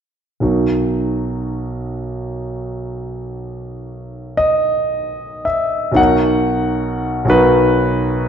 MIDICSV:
0, 0, Header, 1, 2, 480
1, 0, Start_track
1, 0, Key_signature, 5, "major"
1, 0, Tempo, 870827
1, 241, Time_signature, 6, 3, 24, 8
1, 2156, Tempo, 1001669
1, 2636, Tempo, 1067616
1, 3116, Tempo, 902256
1, 3596, Tempo, 851064
1, 4386, End_track
2, 0, Start_track
2, 0, Title_t, "Grand piano"
2, 0, Program_c, 0, 0
2, 222, Note_on_c, 0, 35, 31
2, 229, Note_on_c, 0, 54, 27
2, 231, Note_on_c, 0, 63, 26
2, 236, Note_on_c, 0, 66, 28
2, 237, Note_on_c, 0, 70, 25
2, 358, Control_c, 0, 64, 127
2, 2378, Note_on_c, 0, 75, 69
2, 2878, Note_off_c, 0, 75, 0
2, 2878, Note_on_c, 0, 76, 53
2, 3080, Note_off_c, 0, 35, 0
2, 3086, Note_off_c, 0, 54, 0
2, 3087, Note_on_c, 0, 35, 30
2, 3093, Note_off_c, 0, 63, 0
2, 3093, Note_on_c, 0, 54, 28
2, 3095, Note_off_c, 0, 66, 0
2, 3096, Note_off_c, 0, 70, 0
2, 3100, Note_on_c, 0, 63, 26
2, 3105, Note_on_c, 0, 66, 25
2, 3108, Note_on_c, 0, 78, 62
2, 3110, Note_on_c, 0, 70, 27
2, 3113, Note_off_c, 0, 76, 0
2, 3125, Control_c, 0, 64, 0
2, 3206, Control_c, 0, 64, 127
2, 3794, Note_off_c, 0, 35, 0
2, 3803, Note_off_c, 0, 54, 0
2, 3803, Note_on_c, 0, 35, 35
2, 3807, Note_off_c, 0, 63, 0
2, 3811, Note_off_c, 0, 66, 0
2, 3812, Note_on_c, 0, 54, 28
2, 3813, Note_off_c, 0, 70, 0
2, 3823, Note_on_c, 0, 63, 27
2, 3826, Note_on_c, 0, 66, 28
2, 3830, Note_on_c, 0, 71, 60
2, 3835, Note_off_c, 0, 78, 0
2, 3840, Note_on_c, 0, 70, 27
2, 4386, Note_off_c, 0, 35, 0
2, 4386, Note_off_c, 0, 54, 0
2, 4386, Note_off_c, 0, 63, 0
2, 4386, Note_off_c, 0, 66, 0
2, 4386, Note_off_c, 0, 70, 0
2, 4386, Note_off_c, 0, 71, 0
2, 4386, End_track
0, 0, End_of_file